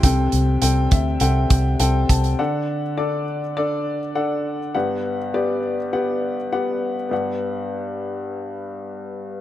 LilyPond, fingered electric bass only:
\new Staff \with { instrumentName = "Fingered electric bass" } { \clef bass \time 4/4 \key g \major \tempo 4 = 102 c,8 c,8 c,8 d,8 c,8 c,8 c,8 c,8 | r1 | r1 | r1 | }